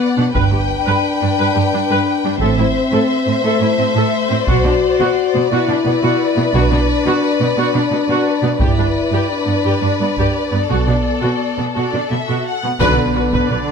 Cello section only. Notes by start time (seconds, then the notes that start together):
0.18 B2
0.35 G2
0.52 G2
0.87 G2
1.22 G2
1.38 G2
1.56 G2
1.73 G2
1.90 G2
2.24 G2
2.41 A2
2.58 A2
2.92 A2
3.27 A2
3.44 A2
3.61 A2
3.78 A2
3.96 A2
4.31 A2
4.48 B2
4.65 B2
5.00 B2
5.34 B2
5.51 B2
5.68 B2
5.86 B2
6.03 B2
6.37 B2
6.54 B2
6.72 B2
7.06 B2
7.41 B2
7.58 B2
7.74 B2
7.91 B2
8.09 B2
8.43 B2
8.60 G2
8.77 G2
9.11 G2
9.46 G2
9.64 G2
9.82 G2
10.00 G2
10.17 G2
10.52 G2
10.69 B2
10.87 B2
11.23 B2
11.58 B2
11.76 B2
11.93 B2
12.11 B2
12.29 B2
12.64 B2
12.81 D3